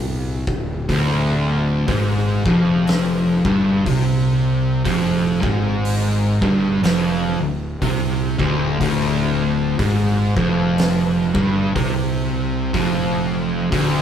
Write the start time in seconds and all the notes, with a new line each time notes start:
Already playing: C2
0.47 D1, kick
0.89 D1 D2, kick, open hi-hat
1.88 G#1 G#2, kick, open hi-hat
2.45 F1 F2, kick
2.87 snare, open hi-hat
3.45 G1 G2, kick
3.86 C2 C3, kick, open hi-hat
4.85 F1 F2, kick, open hi-hat
5.41 G#1 G#2, kick
5.85 open hi-hat
6.42 G1 G2, kick
6.83 F1 F2, snare, open hi-hat
7.40 D1 D2
7.81 C2 C3, kick, open hi-hat
8.38 D1 D2, kick
8.80 D1 D2, kick, open hi-hat
9.79 G#1 G#2, kick, open hi-hat
10.36 F1 F2, kick
10.78 snare, open hi-hat
11.34 G1 G2, kick
11.75 C2 C3, kick, open hi-hat
12.73 F1 F2, kick, open hi-hat
13.71 D1 D2, kick, open hi-hat